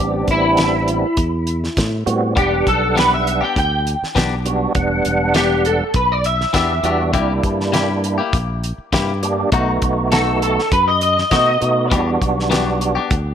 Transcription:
Already playing: fingered electric bass A1, clean electric guitar G4
0.00 tonewheel organ G3 B3 C4 D4
0.28 fingered electric bass A1, clean electric guitar E4, kick, closed hi-hat
0.57 snare, closed hi-hat
0.88 closed hi-hat
1.17 fingered electric bass E2, kick, closed hi-hat
1.47 closed hi-hat
1.64 snare
1.77 fingered electric bass A2, kick, snare, closed hi-hat
2.06 fingered electric bass A2, tonewheel organ G3 B3 C4 F#4, closed hi-hat
2.36 fingered electric bass E1, clean electric guitar E3 B3 D4 G4, tonewheel organ G3 B3 D4 F#5, kick, closed hi-hat
2.67 fingered electric bass B1, clean electric guitar A4, kick, closed hi-hat
2.96 clean electric guitar E3 B3 D4 G4 B4, snare, closed hi-hat
3.14 clean electric guitar E5
3.27 closed hi-hat
3.41 clean electric guitar B3 D4 G4 G5
3.56 fingered electric bass D2, clean electric guitar G5, kick, closed hi-hat
3.87 closed hi-hat
4.03 muted fingered electric bass stroke, snare
4.15 fingered electric bass B1, clean electric guitar E3 B3 D4 G4, kick, snare, closed hi-hat
4.46 tonewheel organ G3 B3 D4 F#4, closed hi-hat
4.75 fingered electric bass E1, tonewheel organ G3 B3 D4 F#5, kick, closed hi-hat
5.05 fingered electric bass E1, closed hi-hat
5.34 clean electric guitar E3 B3 D4 G4, snare, closed hi-hat
5.65 clean electric guitar A4, closed hi-hat
5.94 fingered electric bass B1, clean electric guitar B4, kick, closed hi-hat
6.12 clean electric guitar D5
6.24 clean electric guitar E5, closed hi-hat
6.41 snare
6.53 fingered electric bass E2, clean electric guitar E3 B3 D4 G4 E5, kick, snare, closed hi-hat
6.83 fingered electric bass E2, clean electric guitar E3 B3 D4 G4, tonewheel organ G3 B3 D4 F#4, closed hi-hat
7.13 fingered electric bass C2, clean electric guitar C3 A#3 E4 G4, tonewheel organ G3 A#3 D4 E4, kick, closed hi-hat
7.43 fingered electric bass G2, kick, closed hi-hat
7.61 snare
7.72 clean electric guitar C3 A#3 E4 G4, snare, closed hi-hat
8.04 closed hi-hat
8.18 clean electric guitar A#3 E4 G4
8.33 fingered electric bass A#1, kick, closed hi-hat
8.64 closed hi-hat
8.78 muted fingered electric bass stroke
8.93 fingered electric bass G2, clean electric guitar C3 A#3 E4 G4, kick, snare, closed hi-hat
9.23 tonewheel organ G3 A#3 D4 G4, closed hi-hat
9.52 fingered electric bass B1, clean electric guitar B2 A3 D#4 F#4, tonewheel organ A3 B3 D#4 F#4, kick, closed hi-hat
9.82 fingered electric bass B1, kick, closed hi-hat
10.12 clean electric guitar B2 A3 D#4 F#4 A4, snare, closed hi-hat
10.42 clean electric guitar A4, closed hi-hat
10.59 snare
10.72 fingered electric bass F#2, clean electric guitar B4, kick, closed hi-hat
10.88 clean electric guitar D#5
11.01 clean electric guitar D#5, closed hi-hat
11.18 snare
11.31 fingered electric bass B2, clean electric guitar B2 A3 D#4 F#4 D#5, kick, snare, closed hi-hat
11.61 fingered electric bass B2, tonewheel organ A3 B3 D#4 F#4, closed hi-hat
11.91 fingered electric bass E2, clean electric guitar E3 B3 D4 G4, tonewheel organ G3 B3 D4 F#4, kick, closed hi-hat
12.21 fingered electric bass B1, kick, closed hi-hat
12.40 snare
12.50 clean electric guitar E3 B3 D4 G4, snare, closed hi-hat
12.81 closed hi-hat
12.95 clean electric guitar B3 D4 G4
13.11 fingered electric bass D2, kick, closed hi-hat

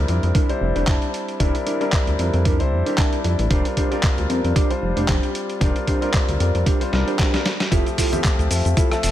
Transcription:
0.08 analog synth bass F2, grand piano G3 C4 D4 E4 A#4, closed hi-hat
0.23 analog synth bass F2, closed hi-hat
0.34 clean electric guitar D4 E4 A#4, kick, closed hi-hat
0.49 grand piano G3 C4 D4 E4 C5, closed hi-hat
0.61 analog synth bass F1, muted clean electric guitar stroke
0.76 analog synth bass F1, clean electric guitar D4 E4 C5, closed hi-hat
0.87 analog synth bass F1, grand piano G3 C4 D4 E4 A5, kick, clap, closed hi-hat
1.02 closed hi-hat
1.14 closed hi-hat
1.28 closed hi-hat
1.40 analog synth bass F1, grand piano G3 C4 D4 E4 A#4, clean electric guitar D4 E4 A#4, kick, closed hi-hat
1.55 closed hi-hat
1.66 clean electric guitar D4 E4 A#4, closed hi-hat
1.80 grand piano G3 C4 D4 E4 A#4, closed hi-hat
1.92 kick, clap, closed hi-hat
2.07 analog synth bass D2, muted clean electric guitar stroke, closed hi-hat
2.19 analog synth bass F2, grand piano G3 C4 D4 E4 A#4, closed hi-hat
2.34 analog synth bass F2, closed hi-hat
2.45 clean electric guitar D4 E4 A#4, kick, closed hi-hat
2.59 analog synth bass C2, grand piano G3 C4 D4 E4 C5, closed hi-hat
2.72 analog synth bass F2, muted clean electric guitar stroke
2.86 clean electric guitar D4 E4 A#4, closed hi-hat
2.98 grand piano G3 C4 D4 E4 A5, kick, clap, closed hi-hat
3.13 closed hi-hat
3.24 analog synth bass F2, closed hi-hat
3.39 analog synth bass A1, closed hi-hat
3.50 analog synth bass F1, grand piano G3 C4 D4 F4 A#4, clean electric guitar D4 G4 C5, kick, closed hi-hat
3.65 closed hi-hat
3.77 clean electric guitar D4 G4 C5, kick, closed hi-hat
3.91 grand piano G3 C4 D4 F4 A#4, closed hi-hat
4.03 kick, clap, closed hi-hat
4.18 analog synth bass D2, muted clean electric guitar stroke, closed hi-hat
4.29 analog synth bass F2, grand piano G3 C4 D4 F4 A#4, closed hi-hat
4.44 analog synth bass F2, closed hi-hat
4.55 clean electric guitar D4 G4 C5, kick, closed hi-hat
4.70 grand piano G3 C4 D4 F4 C5, closed hi-hat
4.82 analog synth bass F1, muted clean electric guitar stroke
4.96 analog synth bass F1, clean electric guitar D4 G4 C5, closed hi-hat
5.08 analog synth bass F1, grand piano G3 C4 F4 G4, kick, clap, closed hi-hat
5.23 closed hi-hat
5.35 closed hi-hat
5.50 closed hi-hat
5.61 analog synth bass F1, grand piano G3 C4 D4 F4 A#4, clean electric guitar D4 G4 C5, kick, closed hi-hat
5.76 closed hi-hat
5.87 clean electric guitar D4 G4 C5, kick, closed hi-hat
6.01 grand piano G3 C4 D4 F4 A#4, closed hi-hat
6.14 kick, clap, closed hi-hat
6.28 analog synth bass D2, muted clean electric guitar stroke, closed hi-hat
6.40 analog synth bass F2, grand piano G3 C4 D4 F4 A#4, closed hi-hat
6.55 analog synth bass F2, closed hi-hat
6.66 clean electric guitar D4 G4 C5, kick, closed hi-hat
6.80 grand piano G3 C4 D4 F4 C5, closed hi-hat
6.92 analog synth bass C2, grand piano G3 C4 D4 F4 A#4, muted clean electric guitar stroke, snare
7.07 clean electric guitar D4 G4 C5, closed hi-hat
7.19 kick, snare, clap, closed hi-hat
7.33 grand piano G3 C4 D4 F4 A#4, snare, closed hi-hat
7.46 snare, closed hi-hat
7.60 snare, closed hi-hat
7.71 analog synth bass F1, grand piano F3 A3 C4 G4 E5, clean electric guitar E4 F4 A4, kick, closed hi-hat, shaker
7.87 closed hi-hat, shaker
7.98 clean electric guitar E4 F4 A4, kick, open hi-hat, shaker
8.12 grand piano F3 A3 C4 G4 E5, closed hi-hat, low conga, shaker
8.24 kick, clap, closed hi-hat, shaker
8.39 analog synth bass D2, muted clean electric guitar stroke, closed hi-hat, shaker
8.50 analog synth bass F2, grand piano F3 A3 C4 G4 E5, open hi-hat, shaker
8.65 analog synth bass F2, closed hi-hat, shaker
8.77 clean electric guitar E4 F4 A4, kick, closed hi-hat, shaker
8.91 grand piano F3 A3 C4 A4 E5, cross-stick, closed hi-hat, shaker
9.03 analog synth bass F1, muted clean electric guitar stroke, open hi-hat, shaker

